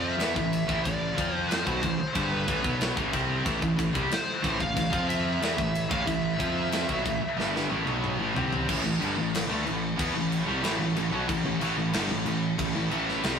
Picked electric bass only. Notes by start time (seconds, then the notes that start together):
Already playing: F2
0.18 E2
0.36 A1
0.69 A1
0.86 A1
1.17 F2
1.67 B1
1.83 A1
1.99 muted picked electric bass stroke
2.15 G1
2.48 A1
2.65 B1
2.97 A1
3.13 C2
3.46 A1
3.62 A1
3.79 A1
3.95 C2
4.12 muted picked electric bass stroke
4.44 A1
4.60 A1
4.76 A1
4.93 F2
5.42 E2
5.58 A1
5.91 A1
6.07 A1
6.40 F2
6.89 B1
7.05 A1
7.20 muted picked electric bass stroke
7.36 G1
7.69 A1
7.86 B1
8.18 A1
8.35 C2
8.69 A1
8.85 A1
9.01 G1
9.18 A1
9.50 D2
9.66 A1
9.99 E2
10.16 A1
10.48 C2
10.63 A1
10.80 A1
10.96 A1
11.12 B1
11.29 A1
11.44 A1
11.62 A1
11.78 A1
11.94 G1
12.10 A1
12.27 A1
12.59 A1
12.76 A1
12.92 A1
13.25 C2